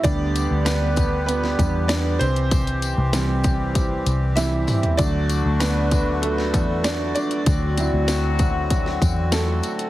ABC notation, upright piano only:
X:1
M:4/4
L:1/8
Q:1/4=97
K:Dmix
V:1 name="Upright piano"
[Dd]2 [B,B]2 [B,B]2 [Dd] [Cc]- | [Cc]3 z3 [Ee]2 | d2 [B,B]2 [A,A]2 [Dd] [Dd]- | [Dd]3 z3 [A,A]2 |]
V:2 name="Upright piano" clef=bass
[D,G,B,]3 z2 [D,G,B,] z2 | z2 [E,G,C]4 [E,G,C] z | [F,A,D]3 z4 z | z [F,CE]6- [F,CE] |]